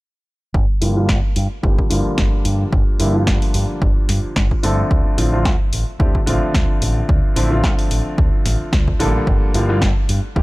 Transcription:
0.54 fingered electric bass G1, kick
0.81 fingered electric bass G2, grand piano D3 F3 G3 A#3 F4, open hi-hat
0.96 grand piano D3 F3 G3 A#3 F4
1.09 fingered electric bass G1, kick, snare
1.36 fingered electric bass G2, open hi-hat
1.63 fingered electric bass G1, grand piano D3 F3 G3 A#3 G4, kick
1.79 kick
1.90 fingered electric bass G2, grand piano D3 F3 G3 A#3 F4, open hi-hat
2.06 muted fingered electric bass stroke
2.18 fingered electric bass G1, kick, snare
2.45 fingered electric bass G2, open hi-hat
2.72 fingered electric bass G1, kick
2.99 fingered electric bass G2, grand piano D3 F3 G3 A#3 E4, open hi-hat
3.14 grand piano D3 F3 G3 A#3 F4
3.27 fingered electric bass G1, kick, snare
3.42 open hi-hat
3.54 fingered electric bass G2, open hi-hat
3.82 fingered electric bass G1, kick
4.09 fingered electric bass G2, snare, open hi-hat
4.24 muted fingered electric bass stroke
4.36 fingered electric bass G1, kick, snare
4.51 kick
4.63 fingered electric bass G2, grand piano D3 F3 A3 C4 A4, open hi-hat
4.91 fingered electric bass D2, kick
5.17 fingered electric bass A1, grand piano D3 F3 A3 C4 F4, open hi-hat
5.32 grand piano D3 F3 A3 C4 F4
5.45 fingered electric bass D2, kick, snare
5.73 fingered electric bass A1, open hi-hat
5.99 fingered electric bass D2, grand piano D3 F3 A3 C4 G4, kick
6.15 kick
6.26 fingered electric bass A1, grand piano D3 F3 A3 C4 F4, open hi-hat
6.43 muted fingered electric bass stroke
6.54 fingered electric bass D2, kick, snare
6.82 fingered electric bass A1, open hi-hat
7.09 fingered electric bass D2, kick
7.36 fingered electric bass A1, grand piano D3 F3 A3 C4 E4, open hi-hat
7.51 grand piano D3 F3 A3 C4 F4
7.64 fingered electric bass D2, kick, snare
7.79 open hi-hat
7.91 fingered electric bass A1, open hi-hat
8.18 fingered electric bass D2, kick
8.46 fingered electric bass A1, snare, open hi-hat
8.61 muted fingered electric bass stroke
8.73 fingered electric bass D2, kick, snare
8.88 kick
8.99 fingered electric bass A1, grand piano D3 F3 G3 A#3 A4, open hi-hat
9.27 fingered electric bass G1, kick
9.54 fingered electric bass G2, grand piano D3 F3 G3 A#3 F4, open hi-hat
9.69 grand piano D3 F3 G3 A#3 F4
9.82 fingered electric bass G1, kick, snare
10.09 fingered electric bass G2, open hi-hat
10.36 fingered electric bass G1, grand piano D3 F3 G3 A#3 G4, kick

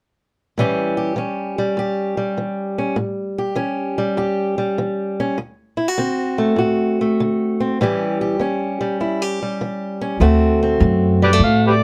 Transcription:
0.58 steel-string acoustic guitar A2 E3 G3 C#4 G4
0.97 steel-string acoustic guitar G4
1.16 steel-string acoustic guitar E3 C#4
1.58 steel-string acoustic guitar G3
1.77 steel-string acoustic guitar E2 G4
2.17 steel-string acoustic guitar G3
2.38 steel-string acoustic guitar E3
2.78 steel-string acoustic guitar C#4
2.96 steel-string acoustic guitar A2
3.38 steel-string acoustic guitar G4
3.56 steel-string acoustic guitar E3 C#4
3.98 steel-string acoustic guitar G3
4.17 steel-string acoustic guitar E2 G4
4.58 steel-string acoustic guitar G3
4.78 steel-string acoustic guitar E3
5.20 steel-string acoustic guitar C#4
5.38 steel-string acoustic guitar D2
5.77 steel-string acoustic guitar E4
5.88 steel-string acoustic guitar F#4
5.98 steel-string acoustic guitar D3 C4
6.38 steel-string acoustic guitar A3
6.56 steel-string acoustic guitar A2 F#4
7.01 steel-string acoustic guitar A3
7.20 steel-string acoustic guitar D3
7.60 steel-string acoustic guitar C4
7.81 steel-string acoustic guitar A2 E3 G3 C#4 G4
8.21 steel-string acoustic guitar G4
8.40 steel-string acoustic guitar E3 C#4
8.81 steel-string acoustic guitar G3
9.00 steel-string acoustic guitar E2 E4
9.22 steel-string acoustic guitar G4
9.42 steel-string acoustic guitar G3
9.61 steel-string acoustic guitar E3
10.01 steel-string acoustic guitar C#4
10.20 upright bass D2, steel-string acoustic guitar D2 A3 C4 F#4
10.63 steel-string acoustic guitar C4
10.80 upright bass F#2, steel-string acoustic guitar D3
11.22 steel-string acoustic guitar G3, harmonica G4 B4 D5
11.33 steel-string acoustic guitar A3
11.39 upright bass A2
11.44 steel-string acoustic guitar A2, harmonica F5
11.67 harmonica G4 B4 D5

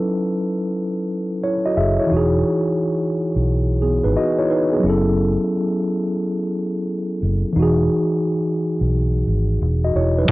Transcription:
Already playing: tine electric piano F#3 C#4 D#4 E4 A4 B4
1.44 tine electric piano E4 C#5
1.66 tine electric piano F#4 D#5
1.77 fingered electric bass F#1, tine electric piano G#4 E5
2.00 tine electric piano E4 C#5
2.07 tine electric piano E3 D#4
2.11 fingered electric bass E1, tine electric piano F#4
2.17 tine electric piano G#4
3.36 fingered electric bass B1
3.82 tine electric piano B3 G#4
4.04 fingered electric bass G#1, tine electric piano D#4 B4
4.17 tine electric piano F#4 D#5
4.39 tine electric piano E4 C#5
4.50 tine electric piano D#4 B4
4.73 tine electric piano B3 G#4
4.80 tine electric piano F#3 C#4
4.84 fingered electric bass F#1, tine electric piano E4
4.89 tine electric piano A4
7.23 fingered electric bass F#1
7.53 fingered electric bass E1, tine electric piano E3 D#4
7.59 tine electric piano F#4 G#4
8.81 fingered electric bass B1
9.27 fingered electric bass G#1
9.62 fingered electric bass E1
9.85 tine electric piano F#4 D#5
9.95 fingered electric bass E1, tine electric piano E4 C#5
10.18 tine electric piano D#4 B4
10.25 tine electric piano F#3, closed hi-hat

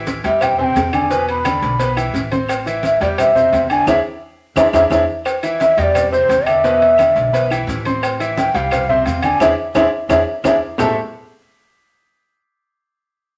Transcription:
Already playing: upright bass A1, grand piano E3 E4 E5
0.07 cowbell, high conga, maracas
0.24 upright bass E2, grand piano G3 G4 G5, bansuri E5, cowbell, high conga, low agogo, maracas
0.41 bansuri G5, cowbell, high conga, low conga, low agogo, claves, maracas
0.58 grand piano C3 C4 C5, bansuri G#5, high conga, low conga
0.64 bansuri G5
0.76 upright bass E2, cowbell, high conga, low timbale, low agogo, maracas
0.93 grand piano D3 D4 D5, bansuri G#5, high conga, low agogo, claves, maracas
1.10 grand piano B2 B3 B4, cowbell, high conga, maracas
1.28 bansuri B5, high conga, low agogo
1.44 grand piano D3 D4 D5, cowbell, high conga, low agogo, claves, maracas
1.62 upright bass B1, cowbell, high conga, maracas
1.80 grand piano B3 B4 B5, cowbell, high conga, low agogo, maracas
1.97 grand piano E3 E4 E5, high conga, low agogo, claves, maracas
2.14 upright bass A1, cowbell, high conga, maracas
2.31 grand piano C4 C5 C6, high conga, low agogo, maracas
2.49 cowbell, high conga, low agogo, claves, maracas
2.66 grand piano E3 E4 E5, high conga, low agogo, maracas
2.83 bansuri E5, cowbell, high conga, maracas
3.01 upright bass E2, grand piano G3 G4 G5, bansuri D5, cowbell, high conga, low agogo, maracas
3.18 bansuri E5, cowbell, high conga, low conga, low agogo, claves, maracas
3.35 grand piano C3 C4 C5, high conga, low conga, maracas
3.52 upright bass E2, cowbell, high conga, low agogo, maracas
3.70 grand piano D3 D4 D5, bansuri G#5, low agogo, claves, maracas
3.87 upright bass E2, grand piano D4 E4 G#4, bansuri E5, cowbell, high conga, high timbale, claves, maracas
4.56 upright bass E2, grand piano D4 E4 G#4, bansuri E5, cowbell, high conga, high timbale, claves, maracas
4.73 upright bass E2, grand piano D4 E4 G#4, bansuri E5, cowbell, high conga, high timbale, claves, maracas
4.90 upright bass E2, grand piano D4 E4 G#4, bansuri E5, cowbell, high conga, high timbale, claves, maracas
5.25 cowbell, high conga, low agogo, claves, maracas
5.43 grand piano E3 E4 E5, high conga, low agogo, maracas
5.60 bansuri E5, cowbell, high conga, maracas
5.77 upright bass E2, grand piano G3 G4 G5, bansuri D#5, cowbell, high conga, low agogo, maracas
5.83 bansuri D5
5.95 cowbell, high conga, low conga, low agogo, claves, maracas
6.12 grand piano C3 C4 C5, bansuri C5, high conga, maracas
6.29 upright bass E2, cowbell, high conga, low agogo, maracas
6.46 grand piano D3 D4 D5, bansuri E5, low agogo, claves, maracas
6.64 grand piano B2 B3 B4, cowbell, high conga, maracas
6.82 high conga, low agogo
6.98 grand piano D3 D4 D5, cowbell, high conga, low agogo, claves, maracas
7.16 upright bass B1, cowbell, high conga, maracas
7.33 grand piano B3 B4 B5, cowbell, high conga, low agogo, maracas
7.50 grand piano E3 E4 E5, high conga, low agogo, claves, maracas
7.67 upright bass A1, cowbell, high conga, maracas
7.85 grand piano C4 C5 C6, high conga, low agogo, maracas
8.03 cowbell, high conga, low agogo, claves, maracas
8.20 grand piano E3 E4 E5, high conga, low agogo, maracas
8.38 bansuri G5, cowbell, high conga, maracas
8.54 upright bass C2, grand piano G3 G4 G5, bansuri F5, cowbell, high conga, low agogo, maracas
8.71 cowbell, high conga, low conga, low agogo, claves, maracas
8.89 grand piano C3 C4 C5, bansuri E5, high conga, low conga
9.05 upright bass E2, bansuri F5, cowbell, high conga, low agogo, maracas
9.22 grand piano D3 D4 D5, bansuri G#5, high conga, low agogo, claves, maracas
9.40 upright bass E2, grand piano D4 E4 G#4, bansuri E5, cowbell, high conga, high timbale, claves, maracas
9.75 upright bass E2, grand piano D4 E4 G#4, bansuri E5, cowbell, high conga, high timbale, claves, maracas
10.09 upright bass E2, grand piano D4 E4 G#4, bansuri E5, cowbell, high conga, high timbale, claves, maracas
10.44 upright bass E2, grand piano D4 E4 G#4, bansuri E5, cowbell, high conga, high timbale, claves, maracas
10.78 upright bass A1, grand piano A3 E4 G4 A4 C5 E5, bansuri A5, low bongo, low conga, low timbale, claves, maracas

